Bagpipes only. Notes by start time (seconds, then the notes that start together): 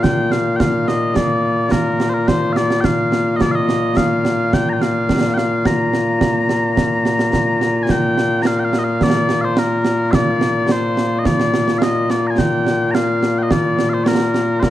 Already playing: A#2 A#3 F4
0.03 G5
0.32 F5
0.56 G5
0.60 F5
0.88 D#5
1.16 D5
1.71 A#4
2.10 C5
2.14 A#4
2.28 C5
2.53 D5 F5
2.80 G5
2.85 F5
3.36 D#5
3.42 D5
3.51 D#5 F5
3.97 F5
4.54 G5
4.69 G5 A#5
4.82 F5
5.34 F5 G5
5.66 A#5
7.83 G#5
7.91 G5
8.42 A#5
8.47 F5
8.60 G5
8.65 F5
8.78 D#5
8.84 F5
9.03 D5
9.41 C5 F5
9.59 A#4
10.11 D5 F5
10.72 C5
11.19 D#5
11.26 D5
11.78 F5
11.83 D#5
12.11 D5
12.27 G#5 A#5
12.39 G5
12.91 F5 A#5
13.38 G5
13.43 D#5
13.51 D5
13.89 F5
13.93 C5
14.04 A#4 D5
14.60 A#4 C5